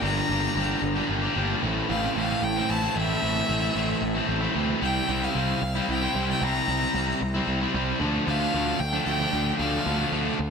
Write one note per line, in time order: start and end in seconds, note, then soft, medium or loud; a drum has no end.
0.01 0.20 G1 loud
0.01 0.54 G2 loud
0.01 0.55 D3 medium
0.01 0.28 G3 loud
0.01 0.28 A#3 loud
0.01 0.29 D4 loud
0.01 0.31 G4 loud
0.01 1.06 A#5 loud
0.28 0.47 G1 loud
0.28 0.44 G3 medium
0.28 0.43 A#3 medium
0.28 0.42 D4 medium
0.28 0.41 G4 loud
0.41 0.56 G3 medium
0.41 0.56 A#3 medium
0.41 0.56 D4 medium
0.41 0.58 G4 medium
0.55 0.73 G1 loud
0.55 1.09 G2 medium
0.55 1.09 D3 medium
0.55 0.83 G3 loud
0.55 0.82 A#3 loud
0.55 0.82 D4 loud
0.55 0.83 G4 loud
0.82 1.00 G1 medium
0.82 muted distorted electric guitar stroke medium
0.95 1.25 G3 medium
0.95 1.23 A#3 medium
0.95 1.22 D4 medium
0.95 1.22 G4 medium
1.09 1.27 G1 medium
1.22 1.34 G3 medium
1.22 1.35 A#3 medium
1.22 1.35 D4 medium
1.22 1.37 G4 medium
1.34 1.54 G1 medium
1.34 1.62 G3 medium
1.34 1.61 A#3 medium
1.34 1.61 D4 medium
1.34 1.64 G4 medium
1.61 1.80 A1 loud
1.61 2.15 A2 loud
1.61 1.88 E3 medium
1.61 1.89 A3 loud
1.61 1.90 C4 medium
1.61 1.91 E4 loud
1.89 2.07 A1 loud
1.89 2.16 E3 medium
1.89 2.05 A3 medium
1.89 2.04 C4 medium
1.89 2.02 E4 medium
1.89 2.14 F5 medium
2.03 2.17 A3 medium
2.03 2.17 C4 medium
2.03 2.18 E4 medium
2.15 2.33 A1 medium
2.15 2.69 A2 loud
2.15 2.43 E3 loud
2.15 2.42 A3 loud
2.15 2.43 C4 loud
2.15 2.43 E4 loud
2.15 2.45 F5 loud
2.42 2.60 A1 medium
2.42 2.71 G5 loud
2.42 muted distorted electric guitar stroke medium
2.56 2.84 A3 medium
2.56 2.84 C4 medium
2.56 2.82 E4 medium
2.69 2.87 A1 medium
2.69 2.98 A5 loud
2.82 2.94 A3 medium
2.82 2.96 C4 medium
2.82 2.98 E4 medium
2.95 3.13 A1 medium
2.95 3.23 E3 medium
2.95 3.22 A3 medium
2.95 3.24 C4 medium
2.95 3.25 E4 medium
2.95 4.56 E5 loud
3.22 3.40 A1 medium
3.22 3.73 A2 medium
3.22 3.48 E3 medium
3.22 3.49 A3 medium
3.22 3.50 C4 loud
3.22 3.51 E4 loud
3.49 3.67 A1 loud
3.49 3.75 E3 medium
3.49 3.64 A3 medium
3.49 3.63 C4 medium
3.49 3.61 E4 medium
3.62 3.75 A3 medium
3.62 3.77 C4 medium
3.62 3.77 E4 medium
3.74 3.93 A1 medium
3.74 4.28 A2 medium
3.74 4.02 E3 loud
3.74 4.02 A3 loud
3.74 4.03 C4 loud
3.74 4.03 E4 loud
4.01 4.19 A1 medium
4.01 muted distorted electric guitar stroke medium
4.14 4.43 A3 medium
4.14 4.42 C4 medium
4.14 4.41 E4 medium
4.28 4.46 A1 medium
4.41 4.54 A3 medium
4.41 4.56 C4 medium
4.41 4.57 E4 medium
4.54 4.73 D2 medium
4.54 4.80 E3 medium
4.54 4.80 A3 medium
4.54 4.82 C4 medium
4.54 4.83 E4 medium
4.81 4.99 C2 medium
4.81 5.07 C3 medium
4.81 5.08 G3 loud
4.81 5.09 C4 medium
4.81 5.10 E4 loud
4.81 5.25 G5 loud
5.07 5.26 C2 loud
5.07 5.34 C3 medium
5.07 5.23 G3 medium
5.07 5.22 C4 medium
5.07 5.20 E4 medium
5.20 5.35 G3 medium
5.20 5.36 C4 medium
5.20 5.37 E4 medium
5.20 5.89 F5 medium
5.34 5.53 C2 medium
5.34 5.61 C3 medium
5.34 5.61 G3 medium
5.34 5.62 C4 loud
5.34 5.62 E4 loud
5.61 5.79 C2 medium
5.61 muted distorted electric guitar stroke medium
5.75 6.03 G3 medium
5.75 6.03 C4 medium
5.75 6.00 E4 medium
5.88 6.06 C2 medium
5.88 6.27 G5 loud
6.01 6.14 G3 medium
6.01 6.16 C4 medium
6.01 6.16 E4 medium
6.14 6.32 C2 medium
6.14 6.39 C3 medium
6.14 6.41 G3 medium
6.14 6.43 C4 medium
6.14 6.43 E4 medium
6.30 6.45 G5 loud
6.41 6.59 C2 loud
6.41 6.66 C3 medium
6.41 6.68 G3 medium
6.41 6.69 C4 medium
6.41 6.70 E4 loud
6.41 7.48 A#5 loud
6.67 6.85 C2 loud
6.67 6.93 C3 medium
6.67 6.82 G3 medium
6.67 6.82 C4 medium
6.67 6.79 E4 loud
6.81 6.94 G3 medium
6.81 6.96 C4 medium
6.81 6.96 E4 medium
6.94 7.12 C2 loud
6.94 7.20 C3 medium
6.94 7.21 G3 loud
6.94 7.22 C4 loud
6.94 7.21 E4 loud
7.21 7.39 C2 loud
7.21 muted distorted electric guitar stroke soft
7.34 7.63 G3 medium
7.34 7.62 C4 medium
7.34 7.59 E4 medium
7.47 7.65 C2 medium
7.61 7.74 G3 medium
7.61 7.75 C4 medium
7.61 7.75 E4 medium
7.73 7.91 C2 medium
7.73 7.99 C3 medium
7.73 7.99 G3 medium
7.73 8.01 C4 medium
7.73 8.00 E4 medium
8.00 8.18 D2 loud
8.00 8.26 D3 medium
8.00 8.27 F3 loud
8.00 8.28 A3 loud
8.00 8.29 D4 loud
8.26 8.45 D2 loud
8.26 8.53 D3 medium
8.26 8.43 F3 loud
8.26 8.42 A3 medium
8.26 8.40 D4 loud
8.26 8.80 F5 loud
8.40 8.54 F3 medium
8.40 8.55 A3 medium
8.40 8.56 D4 medium
8.54 8.71 D2 loud
8.54 8.79 D3 loud
8.54 8.79 F3 loud
8.54 8.80 A3 loud
8.54 8.81 D4 loud
8.79 8.97 D2 loud
8.79 9.04 G5 loud
8.79 muted distorted electric guitar stroke medium
8.93 9.21 F3 medium
8.93 9.20 A3 medium
8.93 9.19 D4 medium
9.05 9.24 D2 medium
9.05 9.55 G5 loud
9.19 9.32 F3 medium
9.19 9.34 A3 medium
9.19 9.35 D4 medium
9.32 9.51 D2 medium
9.32 9.57 D3 medium
9.32 9.58 F3 medium
9.32 9.60 A3 medium
9.32 9.61 D4 medium
9.58 9.77 D2 loud
9.58 9.85 D3 loud
9.58 9.86 F3 medium
9.58 9.88 A3 medium
9.58 9.89 D4 loud
9.58 10.35 F5 medium
9.86 10.04 D2 loud
9.86 10.10 D3 medium
9.86 10.01 F3 medium
9.86 10.00 A3 medium
9.86 9.98 D4 medium
9.99 10.11 F3 medium
9.99 10.13 A3 medium
9.99 10.14 D4 medium
10.11 10.30 D2 medium
10.11 10.38 D3 medium
10.11 10.38 F3 medium
10.11 10.40 A3 loud
10.11 10.40 D4 loud
10.39 10.50 D2 medium
10.39 muted distorted electric guitar stroke soft